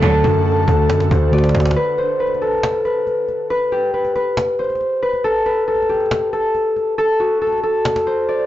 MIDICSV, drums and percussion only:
0, 0, Header, 1, 2, 480
1, 0, Start_track
1, 0, Tempo, 434783
1, 28, Time_signature, 4, 2, 24, 8
1, 9343, End_track
2, 0, Start_track
2, 0, Title_t, "Cajon"
2, 27, Note_on_c, 9, 36, 112
2, 138, Note_off_c, 9, 36, 0
2, 267, Note_on_c, 9, 36, 102
2, 378, Note_off_c, 9, 36, 0
2, 507, Note_on_c, 9, 38, 49
2, 567, Note_off_c, 9, 38, 0
2, 567, Note_on_c, 9, 38, 43
2, 628, Note_off_c, 9, 38, 0
2, 628, Note_on_c, 9, 38, 34
2, 688, Note_off_c, 9, 38, 0
2, 688, Note_on_c, 9, 38, 29
2, 748, Note_on_c, 9, 36, 92
2, 798, Note_off_c, 9, 38, 0
2, 858, Note_off_c, 9, 36, 0
2, 989, Note_on_c, 9, 38, 111
2, 997, Note_off_c, 9, 38, 0
2, 997, Note_on_c, 9, 38, 88
2, 1068, Note_off_c, 9, 38, 0
2, 1068, Note_on_c, 9, 38, 30
2, 1108, Note_off_c, 9, 38, 0
2, 1108, Note_on_c, 9, 38, 76
2, 1147, Note_off_c, 9, 38, 0
2, 1147, Note_on_c, 9, 38, 30
2, 1227, Note_on_c, 9, 36, 103
2, 1258, Note_off_c, 9, 38, 0
2, 1337, Note_off_c, 9, 36, 0
2, 1467, Note_on_c, 9, 38, 64
2, 1527, Note_off_c, 9, 38, 0
2, 1527, Note_on_c, 9, 38, 61
2, 1587, Note_off_c, 9, 38, 0
2, 1587, Note_on_c, 9, 38, 81
2, 1647, Note_off_c, 9, 38, 0
2, 1647, Note_on_c, 9, 38, 76
2, 1707, Note_off_c, 9, 38, 0
2, 1707, Note_on_c, 9, 38, 96
2, 1767, Note_off_c, 9, 38, 0
2, 1767, Note_on_c, 9, 38, 89
2, 1827, Note_off_c, 9, 38, 0
2, 1827, Note_on_c, 9, 38, 115
2, 1887, Note_off_c, 9, 38, 0
2, 1887, Note_on_c, 9, 38, 101
2, 1997, Note_off_c, 9, 38, 0
2, 2187, Note_on_c, 9, 38, 41
2, 2298, Note_off_c, 9, 38, 0
2, 2427, Note_on_c, 9, 38, 29
2, 2507, Note_off_c, 9, 38, 0
2, 2507, Note_on_c, 9, 38, 38
2, 2588, Note_off_c, 9, 38, 0
2, 2588, Note_on_c, 9, 38, 48
2, 2668, Note_off_c, 9, 38, 0
2, 2668, Note_on_c, 9, 38, 44
2, 2728, Note_off_c, 9, 38, 0
2, 2728, Note_on_c, 9, 38, 37
2, 2788, Note_off_c, 9, 38, 0
2, 2788, Note_on_c, 9, 38, 31
2, 2848, Note_off_c, 9, 38, 0
2, 2848, Note_on_c, 9, 38, 25
2, 2908, Note_off_c, 9, 38, 0
2, 2908, Note_on_c, 9, 38, 107
2, 2917, Note_off_c, 9, 38, 0
2, 2917, Note_on_c, 9, 38, 86
2, 3027, Note_off_c, 9, 38, 0
2, 3147, Note_on_c, 9, 38, 49
2, 3258, Note_off_c, 9, 38, 0
2, 3387, Note_on_c, 9, 38, 44
2, 3497, Note_off_c, 9, 38, 0
2, 3627, Note_on_c, 9, 38, 46
2, 3737, Note_off_c, 9, 38, 0
2, 3867, Note_on_c, 9, 38, 46
2, 3977, Note_off_c, 9, 38, 0
2, 4107, Note_on_c, 9, 38, 40
2, 4217, Note_off_c, 9, 38, 0
2, 4347, Note_on_c, 9, 38, 28
2, 4458, Note_off_c, 9, 38, 0
2, 4467, Note_on_c, 9, 38, 47
2, 4577, Note_off_c, 9, 38, 0
2, 4587, Note_on_c, 9, 38, 43
2, 4697, Note_off_c, 9, 38, 0
2, 4827, Note_on_c, 9, 38, 107
2, 4836, Note_off_c, 9, 38, 0
2, 4836, Note_on_c, 9, 38, 89
2, 4946, Note_off_c, 9, 38, 0
2, 5067, Note_on_c, 9, 38, 27
2, 5127, Note_off_c, 9, 38, 0
2, 5127, Note_on_c, 9, 38, 36
2, 5187, Note_off_c, 9, 38, 0
2, 5187, Note_on_c, 9, 38, 39
2, 5247, Note_off_c, 9, 38, 0
2, 5247, Note_on_c, 9, 38, 47
2, 5307, Note_off_c, 9, 38, 0
2, 5307, Note_on_c, 9, 38, 45
2, 5418, Note_off_c, 9, 38, 0
2, 5547, Note_on_c, 9, 38, 28
2, 5658, Note_off_c, 9, 38, 0
2, 5667, Note_on_c, 9, 38, 47
2, 5777, Note_off_c, 9, 38, 0
2, 5787, Note_on_c, 9, 38, 45
2, 5897, Note_off_c, 9, 38, 0
2, 6027, Note_on_c, 9, 38, 41
2, 6137, Note_off_c, 9, 38, 0
2, 6267, Note_on_c, 9, 38, 29
2, 6348, Note_off_c, 9, 38, 0
2, 6348, Note_on_c, 9, 38, 39
2, 6428, Note_off_c, 9, 38, 0
2, 6428, Note_on_c, 9, 38, 46
2, 6508, Note_off_c, 9, 38, 0
2, 6508, Note_on_c, 9, 38, 43
2, 6568, Note_off_c, 9, 38, 0
2, 6568, Note_on_c, 9, 38, 36
2, 6628, Note_off_c, 9, 38, 0
2, 6628, Note_on_c, 9, 38, 31
2, 6688, Note_off_c, 9, 38, 0
2, 6688, Note_on_c, 9, 38, 25
2, 6748, Note_off_c, 9, 38, 0
2, 6748, Note_on_c, 9, 38, 103
2, 6757, Note_off_c, 9, 38, 0
2, 6757, Note_on_c, 9, 38, 86
2, 6867, Note_off_c, 9, 38, 0
2, 6988, Note_on_c, 9, 38, 49
2, 7098, Note_off_c, 9, 38, 0
2, 7228, Note_on_c, 9, 38, 45
2, 7338, Note_off_c, 9, 38, 0
2, 7468, Note_on_c, 9, 38, 46
2, 7578, Note_off_c, 9, 38, 0
2, 7708, Note_on_c, 9, 38, 45
2, 7818, Note_off_c, 9, 38, 0
2, 7948, Note_on_c, 9, 38, 40
2, 8058, Note_off_c, 9, 38, 0
2, 8188, Note_on_c, 9, 38, 48
2, 8248, Note_off_c, 9, 38, 0
2, 8248, Note_on_c, 9, 38, 40
2, 8308, Note_off_c, 9, 38, 0
2, 8308, Note_on_c, 9, 38, 34
2, 8368, Note_off_c, 9, 38, 0
2, 8368, Note_on_c, 9, 38, 28
2, 8428, Note_off_c, 9, 38, 0
2, 8428, Note_on_c, 9, 38, 41
2, 8538, Note_off_c, 9, 38, 0
2, 8669, Note_on_c, 9, 38, 109
2, 8677, Note_off_c, 9, 38, 0
2, 8677, Note_on_c, 9, 38, 86
2, 8748, Note_off_c, 9, 38, 0
2, 8748, Note_on_c, 9, 38, 29
2, 8788, Note_off_c, 9, 38, 0
2, 8788, Note_on_c, 9, 38, 76
2, 8828, Note_off_c, 9, 38, 0
2, 8828, Note_on_c, 9, 38, 29
2, 8908, Note_off_c, 9, 38, 0
2, 8908, Note_on_c, 9, 38, 46
2, 9018, Note_off_c, 9, 38, 0
2, 9147, Note_on_c, 9, 38, 43
2, 9258, Note_off_c, 9, 38, 0
2, 9343, End_track
0, 0, End_of_file